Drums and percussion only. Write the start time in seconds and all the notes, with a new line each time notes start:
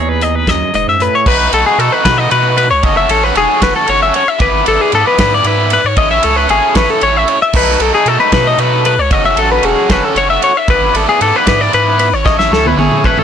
0.21 closed hi-hat
0.47 kick, snare, closed hi-hat
0.74 closed hi-hat
1.00 closed hi-hat
1.26 kick, crash
1.53 ride
1.80 ride
2.05 kick, snare, ride
2.31 ride
2.58 ride
2.83 kick, ride
3.09 ride
3.35 ride
3.62 kick, snare, ride
3.88 ride
4.14 ride
4.40 kick, ride
4.66 ride
4.92 ride
5.18 kick, snare, ride
5.44 ride
5.70 ride
5.97 kick, ride
6.23 ride
6.49 ride
6.75 kick, snare, ride
7.01 ride
7.28 ride
7.53 kick, crash
7.80 ride
8.06 ride
8.32 kick, snare, ride
8.58 ride
8.85 ride
9.11 kick, ride
9.37 ride
9.63 ride
9.90 kick, snare, ride
10.16 ride
10.42 ride
10.68 kick, ride
10.95 ride
11.21 ride
11.47 kick, snare, ride
11.73 ride
11.99 ride
12.26 kick, snare
12.39 snare
12.53 snare
12.66 high tom
12.79 high tom
12.91 mid tom
13.04 kick, mid tom
13.18 mid tom